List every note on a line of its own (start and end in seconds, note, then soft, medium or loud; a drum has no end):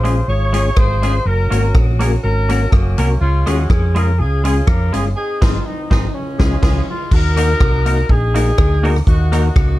0.00 0.21 A#1 medium
0.00 0.14 G#3 medium
0.00 0.24 C#4 medium
0.00 0.27 F4 medium
0.00 0.27 G#4 medium
0.00 0.24 C5 loud
0.04 0.21 G#3 loud
0.04 0.15 C#4 medium
0.04 0.21 C#4 medium
0.04 0.15 F4 medium
0.04 0.22 F4 medium
0.04 0.15 G#4 medium
0.04 0.22 G#4 loud
0.04 closed hi-hat medium
0.28 0.69 G#1 loud
0.28 0.76 F4 medium
0.28 0.33 F4 soft
0.28 0.76 G#4 medium
0.28 0.33 G#4 soft
0.28 0.77 C#5 loud
0.53 0.63 G#3 medium
0.53 0.70 G#3 medium
0.53 0.70 C#4 medium
0.53 0.64 C#4 medium
0.53 0.64 F4 medium
0.53 0.71 F4 medium
0.53 0.64 G#4 medium
0.53 0.71 G#4 loud
0.53 closed hi-hat loud
0.77 1.18 G#1 medium
0.77 1.22 F4 medium
0.77 0.82 F4 soft
0.77 0.82 G#4 soft
0.77 1.22 G#4 medium
0.77 1.26 C5 loud
0.77 kick loud
0.77 cross-stick loud
1.02 1.19 G#3 medium
1.02 1.13 G#3 loud
1.02 1.13 C#4 loud
1.02 1.19 C#4 medium
1.02 1.20 F4 medium
1.02 1.13 F4 loud
1.02 1.20 G#4 loud
1.02 1.14 G#4 loud
1.02 closed hi-hat medium
1.25 1.47 F#1 loud
1.25 2.20 C#4 medium
1.25 2.19 F#4 medium
1.25 1.74 A#4 medium
1.50 1.71 G#1 medium
1.50 1.61 A#3 medium
1.50 1.67 A#3 loud
1.50 1.68 C#4 medium
1.50 1.61 C#4 medium
1.50 1.68 F#4 medium
1.50 1.62 F#4 medium
1.50 1.68 A#4 loud
1.50 1.62 A#4 medium
1.50 closed hi-hat loud
1.75 2.16 A#1 medium
1.75 1.80 F#4 soft
1.75 1.80 A#4 soft
1.75 kick loud
1.75 cross-stick loud
1.99 2.10 A#3 medium
1.99 2.17 A#3 medium
1.99 2.17 C#4 medium
1.99 2.10 C#4 medium
1.99 2.17 F#4 medium
1.99 2.11 F#4 medium
1.99 2.10 G#4 medium
1.99 2.17 A#4 loud
1.99 2.11 A#4 medium
1.99 closed hi-hat medium
2.23 2.65 G#1 loud
2.23 2.70 C#4 medium
2.23 3.17 F#4 medium
2.23 2.29 F#4 soft
2.23 2.68 A#4 loud
2.23 2.29 A#4 soft
2.49 2.65 A#3 medium
2.49 2.59 A#3 medium
2.49 2.66 C#4 medium
2.49 2.60 C#4 medium
2.49 2.66 F#4 medium
2.49 2.60 F#4 medium
2.49 2.66 A#4 loud
2.49 2.60 A#4 medium
2.49 closed hi-hat medium
2.71 2.94 F#1 medium
2.71 3.18 F#3 medium
2.71 3.17 A#3 medium
2.71 3.20 C#4 medium
2.71 2.77 F#4 soft
2.71 2.77 A#4 soft
2.71 kick loud
2.71 cross-stick loud
2.98 3.17 C2 medium
2.98 3.14 A#3 medium
2.98 3.08 A#3 loud
2.98 3.15 C#4 medium
2.98 3.08 C#4 loud
2.98 3.15 F#4 medium
2.98 3.09 F#4 loud
2.98 3.15 A#4 loud
2.98 3.09 A#4 loud
2.98 closed hi-hat medium
3.20 3.43 C#2 loud
3.20 4.15 G#3 medium
3.20 4.15 C#4 medium
3.20 3.44 F4 loud
3.46 3.66 D#2 medium
3.46 3.57 G#3 medium
3.46 3.63 G#3 medium
3.46 3.63 C#4 medium
3.46 3.57 C#4 medium
3.46 3.64 F4 medium
3.46 3.57 F4 loud
3.46 3.69 F#4 medium
3.46 3.64 G#4 loud
3.46 3.58 G#4 loud
3.46 cross-stick medium
3.46 closed hi-hat medium
3.69 4.21 F2 medium
3.69 3.75 F4 soft
3.69 3.93 G#4 medium
3.69 3.75 G#4 soft
3.69 kick loud
3.69 cross-stick loud
3.95 4.05 G#3 medium
3.95 4.12 G#3 loud
3.95 4.12 C#4 medium
3.95 4.06 C#4 medium
3.95 4.12 F4 medium
3.95 4.06 F4 medium
3.95 4.12 G#4 loud
3.95 4.06 G#4 medium
3.95 4.17 A#4 medium
3.95 closed hi-hat medium
4.18 4.61 C#2 loud
4.18 5.13 C#4 medium
4.18 4.24 F4 soft
4.18 5.13 F4 medium
4.18 4.42 G#4 loud
4.18 4.24 G#4 soft
4.43 4.54 G#3 medium
4.43 4.61 G#3 medium
4.43 4.61 C#4 medium
4.43 4.55 C#4 medium
4.43 4.61 F4 medium
4.43 4.55 F4 medium
4.43 4.65 G#4 medium
4.43 4.62 G#4 loud
4.43 4.55 G#4 medium
4.43 closed hi-hat medium
4.66 4.89 F2 loud
4.66 4.73 F4 soft
4.66 4.73 G#4 soft
4.66 4.93 A#4 loud
4.66 kick loud
4.66 cross-stick loud
4.93 5.13 G1 medium
4.93 5.03 G#3 medium
4.93 5.09 G#3 medium
4.93 5.10 C#4 medium
4.93 5.03 C#4 medium
4.93 5.10 F4 medium
4.93 5.04 F4 medium
4.93 5.03 G#4 medium
4.93 5.10 G#4 loud
4.93 5.04 G#4 medium
4.93 closed hi-hat medium
5.15 6.10 C4 medium
5.15 5.63 D#4 medium
5.15 5.39 G#4 loud
5.41 5.58 G#1 loud
5.41 5.57 G#3 loud
5.41 5.57 C4 loud
5.41 5.58 C4 loud
5.41 5.57 D#4 loud
5.41 5.58 D#4 loud
5.41 5.65 F4 medium
5.41 5.58 G#4 loud
5.41 kick loud
5.41 snare loud
5.41 crash medium
5.65 5.89 D#4 medium
5.90 6.07 G#1 medium
5.90 6.06 G#3 loud
5.90 6.06 C4 loud
5.90 6.07 C4 medium
5.90 6.12 D#4 medium
5.90 6.06 D#4 loud
5.90 6.07 D#4 medium
5.90 6.07 G#4 loud
5.90 6.08 G#4 medium
5.90 kick loud
5.90 snare medium
6.14 7.08 F3 medium
6.14 7.08 G#3 medium
6.14 6.88 C#4 medium
6.38 6.55 C#2 loud
6.38 6.55 G#3 medium
6.38 6.55 C#4 loud
6.38 6.56 C#4 medium
6.38 6.55 F4 medium
6.38 6.56 F4 medium
6.38 6.55 G#4 loud
6.38 6.56 G#4 medium
6.38 kick loud
6.38 snare loud
6.62 6.80 C#2 loud
6.62 6.80 G#3 loud
6.62 6.80 C#4 loud
6.62 6.80 F4 loud
6.62 6.81 F4 loud
6.62 6.80 G#4 loud
6.62 6.81 G#4 loud
6.62 kick loud
6.62 snare loud
6.62 crash medium
6.90 7.11 F4 medium
7.11 7.53 D#2 loud
7.11 8.06 D#4 medium
7.11 8.06 F#4 medium
7.11 8.11 A#4 loud
7.11 kick loud
7.11 crash medium
7.36 7.53 A#3 loud
7.36 7.47 A#3 medium
7.36 7.54 D#4 medium
7.36 7.48 D#4 medium
7.36 7.54 F#4 medium
7.36 7.48 F#4 loud
7.36 7.54 A#4 loud
7.36 7.48 A#4 loud
7.36 closed hi-hat loud
7.60 8.02 C2 medium
7.60 7.65 F#4 soft
7.60 7.65 A#4 soft
7.60 kick loud
7.60 cross-stick loud
7.86 8.02 A#3 medium
7.86 7.96 A#3 medium
7.86 8.02 D#4 medium
7.86 7.96 D#4 medium
7.86 8.03 F#4 medium
7.86 7.97 F#4 medium
7.86 8.03 A#4 loud
7.86 7.97 A#4 medium
7.86 closed hi-hat medium
8.09 8.51 A#1 loud
8.09 8.90 D#4 medium
8.09 8.15 F#4 soft
8.09 8.90 G#4 loud
8.09 8.14 A#4 soft
8.09 kick loud
8.34 8.45 A#3 medium
8.34 8.51 A#3 loud
8.34 8.52 D#4 medium
8.34 8.45 D#4 medium
8.34 8.52 F#4 medium
8.34 8.46 F#4 medium
8.34 8.52 A#4 loud
8.34 8.46 A#4 medium
8.34 closed hi-hat loud
8.58 9.00 D2 medium
8.58 8.63 F#4 soft
8.58 8.63 A#4 soft
8.58 kick loud
8.58 cross-stick loud
8.82 9.00 A#3 loud
8.82 8.94 A#3 medium
8.82 9.00 D#4 medium
8.82 8.94 D#4 medium
8.82 9.00 F#4 medium
8.82 8.95 F#4 loud
8.82 9.00 A#4 loud
8.82 8.95 A#4 loud
8.82 open hi-hat soft
8.96 cross-stick medium
9.07 9.48 D#2 loud
9.07 9.32 A#3 medium
9.07 9.32 D#4 medium
9.07 9.32 F#4 medium
9.07 kick loud
9.07 hi-hat pedal medium
9.32 9.49 A#3 medium
9.32 9.43 A#3 medium
9.32 9.79 A#3 medium
9.32 9.49 D#4 medium
9.32 9.43 D#4 medium
9.32 9.79 D#4 medium
9.32 9.49 F#4 medium
9.32 9.43 F#4 loud
9.32 9.79 F#4 medium
9.32 9.49 A#4 loud
9.32 9.43 A#4 loud
9.32 cross-stick medium
9.32 closed hi-hat medium
9.56 9.79 C#2 medium
9.56 9.61 F#4 soft
9.56 9.61 A#4 soft
9.56 kick loud
9.56 cross-stick loud